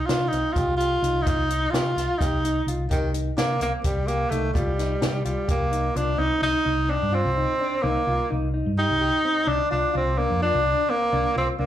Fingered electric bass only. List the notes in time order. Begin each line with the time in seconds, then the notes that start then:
0.09 C3
0.32 C2
0.57 C2
1.02 C2
1.27 C2
1.73 C3
1.96 C2
2.21 C2
2.67 C2
2.91 C2
3.38 C3
3.60 C2
3.84 C2
4.31 C2
4.55 C2
5.02 C3
5.25 C2
5.49 C2
5.96 C2
6.19 C2
6.42 C2
6.66 C2
7.02 G2
7.25 C2
7.84 C2
8.07 C2
8.32 C2
8.66 G2
8.90 C2
9.47 C2
9.72 C2
9.95 C2
10.31 F2
10.54 C2
11.13 C2
11.36 C2
11.59 C2